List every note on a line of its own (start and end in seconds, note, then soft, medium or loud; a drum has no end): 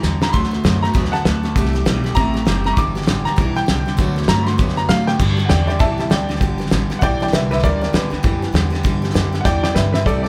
0.00 0.33 E2 medium
0.00 0.20 G2 medium
0.00 0.20 D3 medium
0.00 0.22 E3 medium
0.00 0.22 G3 medium
0.00 0.21 A#5 loud
0.00 snare medium
0.00 hi-hat pedal medium
0.05 0.21 B3 medium
0.05 0.20 G4 medium
0.21 0.33 G2 medium
0.21 0.33 D3 medium
0.21 0.34 E3 soft
0.21 0.34 G3 soft
0.21 0.34 B3 medium
0.21 0.33 G4 medium
0.21 0.34 A#5 loud
0.21 snare medium
0.29 0.32 B5 medium
0.33 0.64 D2 medium
0.33 0.52 D3 medium
0.33 0.62 D3 medium
0.33 0.53 F#3 medium
0.33 0.53 A3 medium
0.33 0.62 A3 loud
0.33 0.52 B3 medium
0.33 0.50 F#4 medium
0.33 0.81 C6 loud
0.33 kick loud
0.33 snare soft
0.44 snare soft
0.51 0.63 A3 soft
0.51 0.64 B3 soft
0.51 0.64 F#4 medium
0.51 snare soft
0.64 0.94 F#2 loud
0.64 0.81 D3 medium
0.64 0.83 F#3 medium
0.64 0.83 A3 medium
0.64 0.82 A3 medium
0.64 0.84 B3 medium
0.64 0.82 F#4 medium
0.64 snare loud
0.64 hi-hat pedal medium
0.82 0.94 D3 medium
0.82 0.94 A3 medium
0.82 0.94 B3 medium
0.82 0.95 F#4 medium
0.82 1.12 A#5 loud
0.82 snare soft
0.87 0.94 A3 soft
0.94 1.24 E2 medium
0.94 1.13 D3 medium
0.94 1.23 D3 medium
0.94 1.13 F#3 medium
0.94 1.14 A3 medium
0.94 1.14 B3 medium
0.94 1.23 B3 medium
0.94 1.12 F#4 medium
0.94 kick loud
0.94 snare soft
1.05 snare soft
1.12 1.26 B3 soft
1.12 1.25 F#4 medium
1.12 1.69 F#5 medium
1.12 1.72 A5 loud
1.12 snare soft
1.17 1.25 A3 soft
1.25 1.55 D2 medium
1.25 1.42 D3 medium
1.25 1.44 F#3 medium
1.25 1.42 A3 medium
1.25 1.45 A3 medium
1.25 1.44 B3 medium
1.25 1.42 F#4 medium
1.25 snare loud
1.25 hi-hat pedal medium
1.43 1.55 D3 medium
1.43 1.55 A3 medium
1.43 1.56 B3 medium
1.43 1.55 F#4 medium
1.43 snare soft
1.47 1.56 A3 soft
1.56 1.85 C2 medium
1.56 1.74 C3 loud
1.56 1.84 C3 medium
1.56 1.75 E3 medium
1.56 1.84 G3 medium
1.56 1.75 A3 loud
1.56 1.74 E4 loud
1.56 1.72 G4 loud
1.56 kick loud
1.56 snare soft
1.65 snare soft
1.73 1.86 A3 medium
1.73 1.86 E4 medium
1.73 1.85 G4 medium
1.73 snare soft
1.85 2.15 B1 loud
1.85 2.03 C3 medium
1.85 2.04 E3 medium
1.85 2.03 G3 medium
1.85 2.05 A3 medium
1.85 2.05 E4 medium
1.85 2.03 G4 medium
1.85 snare loud
1.85 hi-hat pedal medium
2.04 2.15 C3 medium
2.04 2.15 G3 medium
2.04 2.16 E4 medium
2.04 2.16 G4 medium
2.04 snare soft
2.08 2.15 A3 medium
2.15 2.46 A1 medium
2.15 2.34 C3 medium
2.15 2.45 C3 loud
2.15 2.35 E3 medium
2.15 2.35 A3 medium
2.15 2.45 A3 medium
2.15 2.34 E4 medium
2.15 2.32 G4 medium
2.15 2.63 A#5 loud
2.15 kick loud
2.15 snare soft
2.34 2.46 A3 soft
2.34 2.46 E4 soft
2.34 2.46 G4 medium
2.34 snare soft
2.45 2.76 F#1 medium
2.45 2.64 C3 medium
2.45 2.65 E3 medium
2.45 2.64 G3 medium
2.45 2.65 A3 medium
2.45 2.65 E4 medium
2.45 2.63 G4 medium
2.45 snare loud
2.45 hi-hat pedal medium
2.64 2.76 C3 medium
2.64 2.76 G3 medium
2.64 2.78 A3 soft
2.64 2.77 E4 medium
2.64 2.76 G4 medium
2.64 2.77 A#5 loud
2.64 snare soft
2.73 2.95 G2 medium
2.73 2.96 D3 medium
2.73 2.76 C#6 medium
2.73 kick loud
2.73 snare soft
2.77 3.07 G1 medium
2.77 3.06 G2 medium
2.77 3.06 D3 medium
2.77 2.96 E3 medium
2.77 2.96 G3 medium
2.77 2.95 B3 medium
2.77 2.94 G4 medium
2.77 3.25 D6 loud
2.95 3.05 E3 soft
2.95 3.07 G3 medium
2.95 3.08 B3 medium
2.95 3.07 G4 medium
2.95 snare soft
3.02 snare soft
3.06 3.24 A1 loud
3.06 3.24 G2 medium
3.06 3.24 D3 medium
3.06 3.25 E3 medium
3.06 3.26 G3 medium
3.06 3.25 B3 medium
3.06 3.24 G4 medium
3.06 snare loud
3.06 hi-hat pedal medium
3.25 3.37 G2 medium
3.25 3.37 D3 medium
3.25 3.36 E3 soft
3.25 3.37 G3 soft
3.25 3.37 B3 medium
3.25 3.37 G4 medium
3.25 3.55 A#5 loud
3.25 muted upright bass stroke soft
3.25 snare soft
3.36 3.67 B1 medium
3.36 3.56 G2 medium
3.36 3.66 G2 medium
3.36 3.56 D3 medium
3.36 3.56 E3 medium
3.36 3.66 E3 loud
3.36 3.56 G3 medium
3.36 3.55 B3 medium
3.36 3.54 G4 medium
3.36 kick loud
3.36 snare soft
3.56 3.65 E3 soft
3.56 3.67 G3 soft
3.56 3.68 B3 medium
3.56 3.68 G4 medium
3.56 3.97 G5 loud
3.56 snare soft
3.66 3.97 C2 medium
3.66 3.85 G2 medium
3.66 3.85 D3 medium
3.66 3.86 E3 medium
3.66 3.87 G3 medium
3.66 3.85 B3 medium
3.66 3.84 G4 medium
3.66 snare loud
3.66 hi-hat pedal medium
3.86 3.98 G2 medium
3.86 3.97 D3 medium
3.86 3.97 E3 soft
3.86 3.98 G3 medium
3.86 3.98 B3 soft
3.86 3.98 G4 soft
3.86 snare soft
3.97 4.27 D2 medium
3.97 4.16 D3 medium
3.97 4.26 D3 medium
3.97 4.17 F#3 medium
3.97 4.17 A3 loud
3.97 4.27 A3 medium
3.97 4.17 B3 medium
3.97 4.15 F#4 loud
3.97 kick medium
3.97 snare soft
4.16 4.29 A3 soft
4.16 4.29 B3 medium
4.16 4.28 F#4 medium
4.16 snare soft
4.22 snare soft
4.28 4.58 G2 medium
4.28 4.46 D3 medium
4.28 4.47 F#3 medium
4.28 4.46 A3 medium
4.28 4.48 A3 medium
4.28 4.48 B3 medium
4.28 4.45 F#4 medium
4.28 4.47 A#5 loud
4.28 snare loud
4.28 hi-hat pedal medium
4.42 4.45 B5 medium
4.46 4.58 D3 medium
4.46 4.58 A3 medium
4.46 4.59 A3 soft
4.46 4.58 B3 medium
4.46 4.59 F#4 medium
4.46 4.76 C6 medium
4.46 snare soft
4.58 4.88 F#2 medium
4.58 4.77 D3 medium
4.58 4.87 D3 medium
4.58 4.78 F#3 medium
4.58 4.78 A3 medium
4.58 4.87 B3 medium
4.58 4.77 B3 medium
4.58 4.75 F#4 medium
4.58 kick loud
4.58 snare soft
4.69 snare soft
4.77 4.89 A3 soft
4.77 4.90 B3 medium
4.77 4.89 F#4 medium
4.77 4.89 A#5 loud
4.77 snare soft
4.89 5.18 A2 medium
4.89 5.06 D3 medium
4.89 5.08 F#3 medium
4.89 5.06 A3 medium
4.89 5.08 A3 medium
4.89 5.09 B3 medium
4.89 5.06 F#4 medium
4.89 5.07 F5 loud
4.89 snare loud
4.89 hi-hat pedal medium
5.07 5.18 D3 medium
5.07 5.19 A3 medium
5.07 5.20 A3 soft
5.07 5.20 B3 soft
5.07 5.20 F#4 medium
5.07 5.19 G5 loud
5.07 snare medium
5.19 5.47 G2 medium
5.19 5.38 G2 medium
5.19 5.49 G2 medium
5.19 5.38 D3 medium
5.19 5.48 D3 medium
5.19 5.39 E3 medium
5.19 5.38 G3 medium
5.19 5.37 B3 medium
5.19 5.36 G4 medium
5.19 kick loud
5.19 snare soft
5.19 crash medium
5.37 5.48 E3 medium
5.37 5.50 G3 medium
5.37 5.50 B3 medium
5.37 5.49 G4 medium
5.37 snare soft
5.45 5.48 F#5 medium
5.45 5.67 G5 loud
5.49 5.80 E2 loud
5.49 5.67 G2 medium
5.49 5.67 D3 medium
5.49 5.68 E3 medium
5.49 5.69 G3 medium
5.49 5.68 B3 medium
5.49 5.66 G4 medium
5.49 5.66 D5 medium
5.49 snare loud
5.49 hi-hat pedal medium
5.67 5.79 G2 medium
5.67 5.80 D3 medium
5.67 5.80 G3 medium
5.67 5.80 B3 soft
5.67 5.80 G4 medium
5.67 5.79 D5 medium
5.67 5.80 G5 medium
5.67 snare soft
5.72 5.79 E3 soft
5.79 6.10 C2 medium
5.79 5.98 G2 medium
5.79 6.08 G2 medium
5.79 5.99 D3 medium
5.79 6.08 E3 medium
5.79 5.99 E3 medium
5.79 5.99 G3 medium
5.79 5.98 B3 medium
5.79 5.96 G4 medium
5.79 5.97 E5 loud
5.79 5.98 A5 loud
5.79 kick loud
5.79 snare soft
5.98 6.08 E3 soft
5.98 6.10 G3 soft
5.98 6.11 B3 medium
5.98 6.10 G4 medium
5.98 6.10 E5 medium
5.98 6.11 A5 medium
5.98 snare soft
6.10 6.41 D2 medium
6.10 6.27 G2 medium
6.10 6.27 D3 medium
6.10 6.29 E3 medium
6.10 6.30 G3 medium
6.10 6.29 B3 medium
6.10 6.28 G4 medium
6.10 6.39 D5 medium
6.10 6.40 G5 medium
6.10 snare loud
6.10 hi-hat pedal medium
6.29 6.40 G2 medium
6.29 6.40 D3 medium
6.29 6.41 E3 soft
6.29 6.41 G3 soft
6.29 6.41 B3 soft
6.29 6.41 G4 medium
6.29 snare soft
6.35 snare soft
6.41 6.71 G1 medium
6.41 6.60 G2 medium
6.41 6.69 G2 medium
6.41 6.60 D3 medium
6.41 6.70 D3 medium
6.41 6.60 E3 medium
6.41 6.60 G3 medium
6.41 6.58 B3 medium
6.41 6.57 G4 medium
6.41 kick loud
6.41 snare soft
6.58 6.71 G3 medium
6.58 6.71 B3 medium
6.58 6.71 G4 medium
6.58 snare soft
6.62 6.69 E3 medium
6.66 snare soft
6.70 6.89 A1 loud
6.70 6.89 G2 medium
6.70 6.89 D3 medium
6.70 6.90 E3 medium
6.70 6.90 G3 medium
6.70 6.90 B3 medium
6.70 6.89 G4 medium
6.70 snare loud
6.70 hi-hat pedal medium
6.90 7.01 G2 medium
6.90 7.01 D3 medium
6.90 7.01 E3 soft
6.90 7.01 G3 medium
6.90 7.02 B3 medium
6.90 7.02 G4 medium
6.90 muted upright bass stroke soft
6.90 snare soft
6.99 7.32 B1 medium
6.99 7.20 G2 medium
6.99 7.30 G2 medium
6.99 7.20 D3 medium
6.99 7.21 E3 medium
6.99 7.30 E3 loud
6.99 7.21 G3 medium
6.99 7.20 D5 medium
6.99 7.01 F#5 medium
6.99 kick loud
6.99 snare soft
7.03 7.19 B3 medium
7.03 7.19 G4 medium
7.03 7.21 G5 loud
7.20 7.31 E3 soft
7.20 7.32 G3 soft
7.20 7.32 B3 medium
7.20 7.32 G4 medium
7.20 7.32 D5 medium
7.20 7.33 G5 medium
7.20 snare soft
7.27 snare soft
7.32 7.62 C2 medium
7.32 7.49 G2 medium
7.32 7.49 D3 medium
7.32 7.51 E3 medium
7.32 7.51 G3 medium
7.32 7.50 B3 medium
7.32 7.50 G4 medium
7.32 7.49 B4 medium
7.32 7.51 E5 medium
7.32 snare loud
7.32 hi-hat pedal medium
7.51 7.61 G2 medium
7.51 7.62 D3 medium
7.51 7.63 G3 soft
7.51 7.63 B3 medium
7.51 7.63 G4 medium
7.51 7.62 B4 medium
7.51 7.63 E5 loud
7.51 snare soft
7.58 snare soft
7.63 7.93 D2 medium
7.63 7.82 G2 medium
7.63 7.91 G2 medium
7.63 7.91 D3 medium
7.63 7.82 D3 medium
7.63 7.82 E3 medium
7.63 7.83 G3 medium
7.63 7.82 B3 medium
7.63 7.80 G4 medium
7.63 7.80 A#4 medium
7.63 7.81 D5 loud
7.63 kick medium
7.63 snare soft
7.81 7.92 E3 soft
7.81 7.93 G3 medium
7.81 7.94 B3 medium
7.81 7.93 G4 medium
7.81 7.93 A#4 medium
7.81 7.93 D5 medium
7.81 snare soft
7.93 8.11 E2 loud
7.93 8.10 G2 medium
7.93 8.10 D3 loud
7.93 8.12 E3 medium
7.93 8.11 G3 medium
7.93 8.10 B3 medium
7.93 8.09 G4 medium
7.93 8.82 B4 medium
7.93 snare loud
7.93 hi-hat pedal medium
8.10 8.22 G2 medium
8.10 8.23 D3 medium
8.10 8.22 E3 soft
8.10 8.23 G3 soft
8.10 8.23 B3 medium
8.10 8.23 G4 medium
8.10 muted upright bass stroke soft
8.10 snare soft
8.23 8.53 F#2 medium
8.23 8.42 G2 medium
8.23 8.52 G2 medium
8.23 8.42 D3 medium
8.23 8.42 E3 medium
8.23 8.52 E3 medium
8.23 8.42 G3 medium
8.23 8.42 B3 medium
8.23 8.41 G4 medium
8.23 kick loud
8.23 snare soft
8.42 8.51 E3 soft
8.42 8.52 G3 soft
8.42 8.54 B3 medium
8.42 8.54 G4 medium
8.42 snare soft
8.52 8.83 E2 medium
8.52 8.71 G2 medium
8.52 8.71 D3 medium
8.52 8.72 E3 medium
8.52 8.71 G3 medium
8.52 8.70 B3 medium
8.52 8.69 G4 medium
8.52 snare loud
8.52 hi-hat pedal medium
8.70 8.83 G2 medium
8.70 8.83 D3 medium
8.70 8.83 E3 soft
8.70 8.84 G3 medium
8.70 8.84 B3 medium
8.70 8.83 G4 medium
8.70 snare soft
8.83 9.02 G2 medium
8.83 9.12 G2 medium
8.83 9.14 G2 medium
8.83 9.12 D3 medium
8.83 9.03 D3 medium
8.83 9.03 E3 medium
8.83 9.03 G3 medium
8.83 9.02 B3 medium
8.83 9.01 G4 loud
8.83 kick loud
8.83 snare soft
9.02 9.12 E3 medium
9.02 9.13 G3 medium
9.02 9.15 B3 medium
9.02 9.14 G4 medium
9.02 snare soft
9.10 9.32 E3 medium
9.10 snare soft
9.14 9.44 F#2 loud
9.14 9.31 G2 medium
9.14 9.31 D3 medium
9.14 9.33 G3 medium
9.14 9.32 B3 medium
9.14 9.31 G4 medium
9.14 snare loud
9.14 hi-hat pedal medium
9.32 9.44 G2 medium
9.32 9.44 D3 medium
9.32 9.45 E3 soft
9.32 9.45 G3 medium
9.32 9.45 B3 medium
9.32 9.45 G4 medium
9.32 snare soft
9.41 9.43 F#5 medium
9.45 9.75 E2 medium
9.45 9.64 G2 medium
9.45 9.73 G2 medium
9.45 9.64 D3 medium
9.45 9.73 E3 medium
9.45 9.64 E3 medium
9.45 9.64 G3 medium
9.45 9.63 B3 medium
9.45 9.62 G4 medium
9.45 9.62 D5 loud
9.45 9.62 G5 loud
9.45 kick loud
9.45 snare medium
9.63 9.76 B3 medium
9.63 9.75 G4 medium
9.63 9.74 D5 medium
9.63 9.75 G5 loud
9.63 snare medium
9.67 9.75 E3 soft
9.75 9.92 G2 medium
9.75 10.05 G2 medium
9.75 9.92 D3 medium
9.75 9.94 E3 medium
9.75 9.95 G3 medium
9.75 9.95 B3 medium
9.75 9.91 B4 medium
9.75 9.92 E5 medium
9.75 snare medium
9.75 hi-hat pedal medium
9.79 9.94 G4 medium
9.92 10.05 G2 medium
9.92 10.05 D3 medium
9.92 10.07 G4 medium
9.92 10.04 B4 medium
9.92 10.05 E5 loud
9.92 snare medium
9.97 10.06 E3 soft
9.97 10.08 G3 medium
9.97 10.07 B3 medium
10.05 10.28 C2 medium
10.05 10.28 C3 medium
10.05 10.25 C3 medium
10.05 10.25 E3 medium
10.05 10.28 G3 medium
10.05 10.26 A3 medium
10.05 10.25 E4 medium
10.05 10.23 G4 medium
10.05 10.22 A4 medium
10.05 10.21 D5 medium
10.05 kick loud
10.05 snare soft
10.23 10.28 G4 medium
10.23 10.28 A4 medium
10.23 10.28 D5 medium
10.23 snare soft